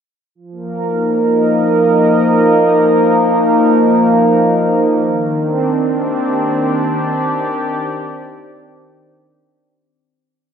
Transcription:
analog synth pad
0.35 F3
0.52 A#3
0.58 A#4
0.85 D#4
1.19 D#5
5.04 D#3
5.33 C4 D4
5.93 D5
6.00 G4

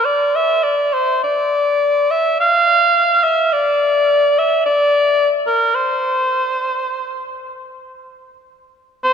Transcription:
cor anglais
0.05 D5
0.35 E5
0.63 D5
0.93 C5
1.24 D5
2.11 E5
2.40 F5
3.23 E5
3.53 D5
4.38 E5
4.66 D5
5.47 A#4
5.75 C5
9.04 C5

